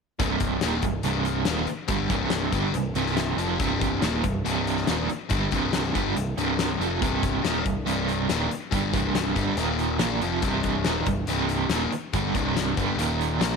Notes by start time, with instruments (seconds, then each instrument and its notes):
0.19 picked electric bass C1, overdriven electric guitar C2 G2 C3, kick, closed hi-hat
0.40 kick, closed hi-hat
0.61 picked electric bass D#1, overdriven electric guitar D#2 A#2 D#3, snare, closed hi-hat
0.82 picked electric bass C1, overdriven electric guitar C2 G2, kick, closed hi-hat
1.03 picked electric bass C1, overdriven electric guitar C2 G2 C3, closed hi-hat
1.25 closed hi-hat
1.45 picked electric bass D#1, overdriven electric guitar D#2 A#2 D#3, snare, closed hi-hat
1.67 muted overdriven electric guitar stroke, muted picked electric bass stroke, closed hi-hat
1.88 picked electric bass G1, overdriven electric guitar G2 D3 G3, kick, closed hi-hat
2.10 picked electric bass C1, overdriven electric guitar C2 G2 C3, kick, closed hi-hat
2.30 snare, closed hi-hat
2.52 picked electric bass G1, overdriven electric guitar G2 D3 G3, kick, closed hi-hat
2.72 picked electric bass C1, overdriven electric guitar C2 G2, closed hi-hat
2.94 picked electric bass C1, overdriven electric guitar C2 G2 C3, closed hi-hat
3.06 snare
3.17 snare, closed hi-hat
3.37 picked electric bass F1, overdriven electric guitar F2 C3 F3, closed hi-hat
3.59 picked electric bass C1, overdriven electric guitar C2 G2 C3, kick, closed hi-hat
3.81 kick, closed hi-hat
4.01 picked electric bass D#1, overdriven electric guitar D#2 A#2 D#3, snare, closed hi-hat
4.23 picked electric bass C1, overdriven electric guitar C2 G2, kick, closed hi-hat
4.44 picked electric bass C1, overdriven electric guitar C2 G2 C3, closed hi-hat
4.67 closed hi-hat
4.77 snare
4.87 picked electric bass D#1, overdriven electric guitar D#2 A#2 D#3, snare, closed hi-hat
5.09 muted overdriven electric guitar stroke, muted picked electric bass stroke, closed hi-hat
5.29 picked electric bass G1, overdriven electric guitar G2 D3 G3, kick, closed hi-hat
5.51 picked electric bass C1, overdriven electric guitar C2 G2 C3, kick, closed hi-hat
5.73 snare, closed hi-hat
5.94 picked electric bass G1, overdriven electric guitar G2 D3 G3, kick, closed hi-hat
6.16 picked electric bass C1, overdriven electric guitar C2 G2, closed hi-hat
6.36 picked electric bass C1, overdriven electric guitar C2 G2 C3, closed hi-hat
6.59 snare, closed hi-hat
6.79 picked electric bass F1, overdriven electric guitar F2 C3 F3, closed hi-hat
7.01 picked electric bass C1, overdriven electric guitar C2 G2 C3, kick, closed hi-hat
7.23 kick, closed hi-hat
7.44 picked electric bass D#1, overdriven electric guitar D#2 A#2 D#3, snare, closed hi-hat
7.65 picked electric bass C1, overdriven electric guitar C2 G2, kick, closed hi-hat
7.86 picked electric bass C1, overdriven electric guitar C2 G2 C3, closed hi-hat
8.08 closed hi-hat
8.29 picked electric bass D#1, overdriven electric guitar D#2 A#2 D#3, snare, closed hi-hat
8.51 muted picked electric bass stroke, muted overdriven electric guitar stroke, closed hi-hat
8.71 picked electric bass G1, overdriven electric guitar G2 D3 G3, kick, closed hi-hat
8.93 picked electric bass C1, overdriven electric guitar C2 G2 C3, kick, closed hi-hat
9.15 snare, closed hi-hat
9.35 picked electric bass G1, overdriven electric guitar G2 D3 G3, kick, closed hi-hat
9.55 picked electric bass D#1, overdriven electric guitar D#2 A#2 D#3, closed hi-hat
9.78 closed hi-hat
9.98 picked electric bass A#1, overdriven electric guitar A#2 F3 A#3, snare, closed hi-hat
10.20 picked electric bass F1, overdriven electric guitar F2 C3 F3, closed hi-hat
10.42 picked electric bass C1, overdriven electric guitar C2 G2 C3, kick, closed hi-hat
10.63 kick, closed hi-hat
10.85 picked electric bass D#1, overdriven electric guitar D#2 A#2 D#3, snare, closed hi-hat
11.06 picked electric bass C1, overdriven electric guitar C2 G2, kick, closed hi-hat
11.26 picked electric bass C1, overdriven electric guitar C2 G2 C3, closed hi-hat
11.49 closed hi-hat
11.69 picked electric bass D#1, overdriven electric guitar D#2 A#2 D#3, snare, closed hi-hat
11.90 muted picked electric bass stroke, muted overdriven electric guitar stroke, closed hi-hat
12.13 picked electric bass G1, overdriven electric guitar G2 D3 G3, kick, closed hi-hat
12.34 picked electric bass C1, overdriven electric guitar C2 G2 C3, kick, closed hi-hat
12.57 snare, closed hi-hat
12.77 picked electric bass G1, overdriven electric guitar G2 D3 G3, kick, closed hi-hat
12.97 picked electric bass D#1, overdriven electric guitar D#2 A#2 D#3, closed hi-hat
13.20 closed hi-hat
13.39 picked electric bass A#1, overdriven electric guitar A#2 F3 A#3, snare, closed hi-hat